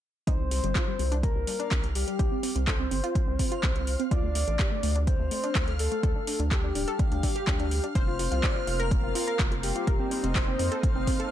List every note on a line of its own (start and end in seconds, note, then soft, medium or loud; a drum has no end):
0.27 0.60 C2 loud
0.27 0.35 D#4 loud
0.27 1.14 C5 loud
0.27 11.31 F5 medium
0.27 11.31 F6 medium
0.27 kick loud
0.27 closed hi-hat medium
0.40 0.47 G3 medium
0.51 0.59 G3 medium
0.51 open hi-hat loud
0.64 0.73 G1 medium
0.64 0.71 G3 medium
0.64 closed hi-hat medium
0.75 0.83 F4 medium
0.75 kick loud
0.75 clap loud
0.75 closed hi-hat medium
0.88 0.95 G3 medium
0.99 1.32 C2 loud
0.99 1.07 G3 medium
0.99 open hi-hat medium
1.12 1.19 D4 loud
1.12 closed hi-hat medium
1.23 1.31 G3 medium
1.23 1.86 A#4 loud
1.23 kick loud
1.23 closed hi-hat medium
1.36 1.45 C2 loud
1.36 1.43 G3 medium
1.47 1.56 G3 medium
1.47 open hi-hat loud
1.60 1.67 D4 medium
1.60 closed hi-hat medium
1.71 2.04 C2 medium
1.71 1.79 G3 medium
1.71 kick loud
1.71 clap loud
1.71 closed hi-hat medium
1.84 1.91 G3 medium
1.84 closed hi-hat soft
1.95 2.58 G4 loud
1.95 open hi-hat medium
2.08 2.15 G3 medium
2.08 closed hi-hat medium
2.19 2.29 C2 medium
2.19 2.27 G4 loud
2.19 kick loud
2.19 closed hi-hat medium
2.32 2.39 C4 medium
2.43 2.51 C4 medium
2.43 open hi-hat loud
2.56 2.88 C2 medium
2.56 2.63 C4 medium
2.56 closed hi-hat medium
2.67 2.75 A4 medium
2.67 4.02 C5 medium
2.67 kick loud
2.67 clap loud
2.67 closed hi-hat medium
2.80 2.87 C4 medium
2.91 3.01 G1 medium
2.91 2.99 C4 medium
2.91 open hi-hat medium
3.04 3.11 F4 medium
3.04 closed hi-hat medium
3.15 3.24 C4 medium
3.15 kick loud
3.15 closed hi-hat medium
3.28 3.37 C2 loud
3.28 3.35 C4 medium
3.39 3.48 C4 medium
3.39 kick medium
3.39 open hi-hat loud
3.52 3.59 F4 medium
3.52 closed hi-hat medium
3.63 3.96 C2 medium
3.63 3.71 C4 medium
3.63 kick loud
3.63 clap loud
3.63 closed hi-hat medium
3.76 3.83 C4 medium
3.76 closed hi-hat soft
3.87 open hi-hat loud
4.00 4.07 C4 medium
4.00 closed hi-hat soft
4.11 4.44 D2 loud
4.11 4.19 F4 loud
4.11 4.98 D5 loud
4.11 kick loud
4.11 closed hi-hat medium
4.24 4.31 A3 medium
4.35 4.43 A3 medium
4.35 open hi-hat loud
4.48 4.57 A1 medium
4.48 4.55 A3 medium
4.48 closed hi-hat medium
4.59 4.67 G4 loud
4.59 kick loud
4.59 clap loud
4.59 closed hi-hat medium
4.72 4.79 A3 medium
4.83 5.16 D2 loud
4.83 4.91 A3 medium
4.83 open hi-hat medium
4.96 5.03 D4 medium
4.96 closed hi-hat soft
5.07 5.15 A3 medium
5.07 5.70 C5 loud
5.07 kick loud
5.07 closed hi-hat medium
5.20 5.29 D2 loud
5.20 5.27 A3 medium
5.31 5.39 A3 medium
5.31 open hi-hat loud
5.44 5.51 D4 medium
5.44 closed hi-hat medium
5.55 5.88 D2 medium
5.55 5.63 A3 medium
5.55 kick loud
5.55 clap loud
5.55 closed hi-hat medium
5.68 5.75 A3 medium
5.68 closed hi-hat soft
5.79 6.42 A4 loud
5.79 open hi-hat medium
5.92 5.99 A3 medium
5.92 closed hi-hat soft
6.03 6.13 D2 medium
6.03 6.11 A4 loud
6.03 kick loud
6.03 closed hi-hat medium
6.16 6.23 D4 medium
6.27 6.35 D4 medium
6.27 open hi-hat loud
6.40 6.72 D2 loud
6.40 6.47 D4 medium
6.40 closed hi-hat soft
6.51 7.86 G4 loud
6.51 6.59 A4 loud
6.51 kick loud
6.51 clap loud
6.51 closed hi-hat medium
6.64 6.71 D4 medium
6.75 6.85 D1 medium
6.75 6.83 D4 medium
6.75 open hi-hat medium
6.88 6.95 A4 loud
6.88 closed hi-hat soft
6.99 7.08 D4 medium
6.99 kick loud
6.99 closed hi-hat medium
7.12 7.21 D2 loud
7.12 7.19 D4 medium
7.12 closed hi-hat soft
7.23 7.31 D4 medium
7.23 kick medium
7.23 open hi-hat loud
7.36 7.43 G4 medium
7.36 closed hi-hat soft
7.47 7.80 D2 medium
7.47 7.55 D4 medium
7.47 kick loud
7.47 clap loud
7.47 closed hi-hat medium
7.60 7.67 D4 medium
7.60 closed hi-hat soft
7.71 open hi-hat loud
7.84 7.91 D4 medium
7.84 closed hi-hat soft
7.95 8.28 F1 loud
7.95 11.31 A#3 medium
7.95 11.31 C4 medium
7.95 9.85 F4 medium
7.95 8.82 C5 loud
7.95 8.04 C5 loud
7.95 kick loud
7.95 closed hi-hat medium
8.08 8.15 F4 medium
8.19 8.28 F4 medium
8.19 open hi-hat loud
8.32 8.41 C2 medium
8.32 8.39 F4 medium
8.32 closed hi-hat soft
8.43 8.51 D5 medium
8.43 kick loud
8.43 clap loud
8.43 closed hi-hat medium
8.56 8.63 F4 medium
8.67 9.00 F1 medium
8.67 8.75 F4 medium
8.67 open hi-hat medium
8.80 8.87 A#4 loud
8.80 closed hi-hat soft
8.91 9.54 A#4 loud
8.91 kick loud
8.91 closed hi-hat medium
9.04 9.13 F1 loud
9.04 9.11 F4 medium
9.15 9.23 F4 medium
9.15 open hi-hat loud
9.28 9.35 A#4 medium
9.28 closed hi-hat medium
9.39 9.72 F1 medium
9.39 9.47 F4 medium
9.39 kick loud
9.39 clap loud
9.39 closed hi-hat medium
9.52 9.59 F4 medium
9.52 closed hi-hat soft
9.63 10.26 G4 loud
9.63 open hi-hat medium
9.76 9.83 F4 medium
9.76 closed hi-hat soft
9.87 9.97 F1 medium
9.87 11.31 D#4 medium
9.87 9.95 A#4 loud
9.87 kick loud
9.87 closed hi-hat medium
10.00 10.07 C4 medium
10.11 10.19 C4 medium
10.11 open hi-hat medium
10.24 10.56 F1 loud
10.24 10.31 C4 medium
10.24 closed hi-hat medium
10.35 10.43 C5 loud
10.35 11.31 C5 loud
10.35 kick loud
10.35 clap loud
10.35 closed hi-hat medium
10.48 10.55 C4 medium
10.59 10.69 F2 medium
10.59 10.67 C4 medium
10.59 open hi-hat medium
10.72 10.79 A4 medium
10.72 closed hi-hat medium
10.83 10.92 C4 medium
10.83 kick loud
10.83 closed hi-hat medium
10.96 11.05 F1 loud
10.96 11.03 C4 medium
11.07 11.15 C4 medium
11.07 kick medium
11.07 open hi-hat loud
11.20 11.27 A4 medium
11.20 closed hi-hat medium